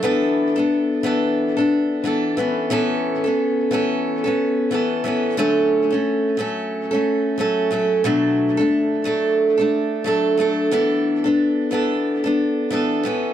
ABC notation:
X:1
M:4/4
L:1/16
Q:"Swing 16ths" 1/4=90
K:Emix
V:1 name="Steel-string acoustic guitar"
[E,B,DA]3 [B,DA]3 [E,B,DA]3 [B,DA]3 [E,B,DA]2 [E,B,CA]2 | [E,B,CA]3 [B,CA]3 [E,B,CA]3 [B,CA]3 [E,B,CA]2 [E,B,CA]2 | [D,F,A,CA]3 [A,CA]3 [F,A,CA]3 [A,CA]3 [F,A,CA]2 [F,A,CA]2 | [B,,F,A,DA]3 [A,DA]3 [F,A,DA]3 [A,DA]3 [F,A,DA]2 [F,A,DA]2 |
[E,B,DA]3 [B,DA]3 [E,B,DA]3 [B,DA]3 [E,B,DA]2 [E,B,CA]2 |]